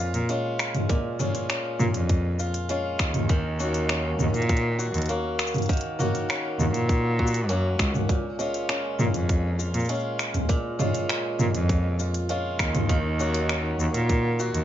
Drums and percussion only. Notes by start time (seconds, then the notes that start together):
0.14 closed hi-hat, shaker
0.29 closed hi-hat, shaker
0.59 finger snap, shaker
0.75 closed hi-hat, mid tom, shaker
0.89 kick, closed hi-hat, shaker
1.20 mid tom, shaker
1.35 closed hi-hat, shaker
1.50 finger snap, closed hi-hat, shaker
1.80 mid tom, shaker
1.94 closed hi-hat, shaker
2.09 kick, closed hi-hat, shaker
2.39 shaker
2.54 closed hi-hat, shaker
2.69 closed hi-hat, shaker
2.99 finger snap, kick, shaker
3.14 closed hi-hat, mid tom, shaker
3.29 kick, closed hi-hat, shaker
3.60 shaker
3.74 closed hi-hat, shaker
3.89 finger snap, closed hi-hat, shaker
4.19 mid tom, shaker
4.34 closed hi-hat, shaker
4.42 closed hi-hat
4.49 kick, closed hi-hat, shaker
4.57 closed hi-hat
4.80 shaker
4.94 closed hi-hat, shaker
4.98 closed hi-hat
5.02 closed hi-hat
5.06 closed hi-hat
5.09 closed hi-hat, shaker
5.39 finger snap, shaker
5.47 shaker
5.54 closed hi-hat, mid tom, shaker
5.58 closed hi-hat
5.62 closed hi-hat, shaker
5.66 kick, closed hi-hat
5.70 closed hi-hat, shaker
5.73 closed hi-hat
5.77 closed hi-hat
5.81 closed hi-hat
6.00 mid tom, shaker
6.15 closed hi-hat, shaker
6.30 finger snap, closed hi-hat, shaker
6.60 mid tom, shaker
6.74 closed hi-hat, shaker
6.89 kick, closed hi-hat, shaker
7.19 kick
7.27 shaker
7.34 closed hi-hat, shaker
7.49 closed hi-hat, shaker
7.79 finger snap, kick, shaker
7.94 mid tom, shaker
8.09 kick, closed hi-hat, shaker
8.40 shaker
8.54 closed hi-hat, shaker
8.69 finger snap, closed hi-hat, shaker
8.99 mid tom, shaker
9.14 closed hi-hat, shaker
9.29 kick, closed hi-hat, shaker
9.60 shaker
9.74 closed hi-hat, shaker
9.79 shaker
9.85 shaker
9.89 closed hi-hat, shaker
9.95 shaker
10.00 shaker
10.19 finger snap, shaker
10.34 closed hi-hat, mid tom, shaker
10.49 kick, closed hi-hat, shaker
10.80 mid tom, shaker
10.95 closed hi-hat, shaker
11.09 finger snap, closed hi-hat, shaker
11.39 mid tom, shaker
11.55 closed hi-hat, shaker
11.69 kick, closed hi-hat, shaker
12.00 shaker
12.14 closed hi-hat, shaker
12.29 closed hi-hat, shaker
12.59 finger snap, kick, shaker
12.75 closed hi-hat, mid tom, shaker
12.89 kick, closed hi-hat, shaker
13.20 shaker
13.34 closed hi-hat, shaker
13.49 finger snap, closed hi-hat, shaker
13.80 shaker
13.94 closed hi-hat, shaker
14.09 kick, closed hi-hat, shaker
14.39 shaker
14.54 closed hi-hat, shaker